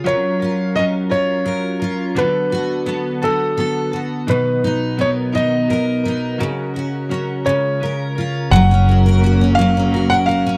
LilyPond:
<<
  \new Staff \with { instrumentName = "Grand piano" } { \time 6/8 \key fis \major \tempo 4. = 57 cis''4 dis''8 cis''4. | b'4. a'4 r8 | b'4 cis''8 dis''4.~ | dis''4. cis''4. |
fis''4. eis''8. fis''16 eis''8 | }
  \new Staff \with { instrumentName = "Steel-string acoustic guitar" } { \time 6/8 \key fis \major fis8 eis'8 cis'8 eis'8 ais'8 eis'8 | d8 fis'8 b8 fis'8 a'8 fis'8 | b,8 dis'8 b8 dis'8 ais'8 dis'8 | cis8 fis'8 cis'8 cis8 ais'8 eis'8 |
fis16 cis'16 fis'16 ais'16 fis'16 cis'16 fis16 cis'16 fis'16 ais'16 fis'16 cis'16 | }
  \new Staff \with { instrumentName = "Clean electric guitar" } { \time 6/8 \key fis \major <fis cis' eis' ais'>8 <cis' eis' ais'>8 <fis cis' eis' ais'>8 <fis cis' eis' ais'>8 <fis cis' eis' ais'>8 <cis' eis' ais'>8 | <d fis b fis' a'>8 <b fis' a'>8 <fis b fis' a'>8 <d fis b fis' a'>8 <fis b fis' a'>8 <b fis' a'>8 | <b, dis fis b dis'>8 <fis b dis'>8 <fis b dis' ais'>8 <b, dis fis b dis' ais'>8 <fis b dis' ais'>8 <fis b dis' ais'>8 | <cis fis cis' fis' ais'>8 <cis' fis' ais'>8 <fis cis' fis' ais'>8 <cis gis cis' eis' ais'>8 <gis cis' eis' ais'>8 <cis' eis' ais'>8 |
<fis cis' fis' ais'>16 <cis' fis' ais'>16 <fis cis' fis' ais'>8 <fis cis' fis' ais'>8 <fis cis' fis' ais'>16 <cis' fis' ais'>16 <fis cis' fis' ais'>8 <fis cis' fis' ais'>8 | }
  \new Staff \with { instrumentName = "String section" } { \clef bass \time 6/8 \key fis \major r2. | r2. | r2. | r2. |
<cis fis ais>2. | }
  \new Staff \with { instrumentName = "Fingered electric bass" } { \clef bass \time 6/8 \key fis \major r2. | r2. | r2. | r2. |
fis,,2. | }
>>